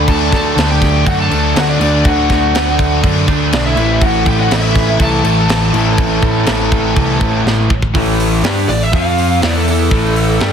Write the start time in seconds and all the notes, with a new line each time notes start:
Already playing: D3 F#3 A3 D4 B5
0.08 D2 A4 A5, kick, crash
0.32 D2 A4 A5, kick, snare, crash
0.56 D2 D3 A3 D4, snare, crash
0.71 G4 G5
0.82 kick, snare, crash
1.06 F#2 D3 F#3 A3 D4 F#4 F#5, kick, crash
1.20 A4 A5
1.31 D2 D3 F#3 A3 D4, crash
1.56 D2 F#4 F#5, snare, crash
1.69 D4 D5
1.80 D2 D3 F#3 A3 D4, crash
2.05 D2 F#4 F#5, kick, crash
2.29 D2, kick, snare, crash
2.54 D2 D3 A3 D4, snare, crash
2.79 kick, crash
3.04 F#2 D3 F#3 A3 D4, kick, crash
3.28 D2 F#3 A3 D4, kick, crash
3.32 D3
3.52 B1 D4 D5, snare, crash
3.66 E4 E5
3.76 A1 A2 E3 A3, crash
3.80 C4 E4
4.01 A1 F#4 F#5, kick, crash
4.26 A1 G4 G5, kick, crash
4.39 F#4 F#5
4.49 A1 A2 E3 A3 E4 E5, snare, crash
4.75 kick, snare, crash
4.99 C2 A2 E3 A3 C4 E4 A4 A5, kick, crash
5.24 A1 A2 E3 A3 C4 E4, crash
5.49 A1, snare, crash
5.72 A1 A2 E3 A3 C4 E4, crash
5.98 A1, kick, crash
6.22 A1, kick, crash
6.46 A1 A2 E3, snare, crash
6.51 A3
6.72 kick, crash
6.96 C2 A2 E3 A3 C4 E4, kick, crash
7.20 A1 E3 A3 C4 E4, kick, crash
7.25 A2
7.45 A1, snare
7.70 A1, kick
7.82 kick
7.94 A1 A2 E3 A3, kick, open hi-hat
8.20 open hi-hat
8.44 G2 G3 D4 G4, snare, open hi-hat
8.68 A1 A2 E3 D5, open hi-hat
8.83 E5
8.93 F2 F3 C4 F4 F5, kick, open hi-hat
9.18 open hi-hat
9.42 E2 E3 B3 E4 D5, snare, open hi-hat
9.56 A4
9.68 A4, open hi-hat
9.91 A1 A2 E3 A3, kick, open hi-hat
10.16 open hi-hat
10.40 G2 G3 D4 G4, snare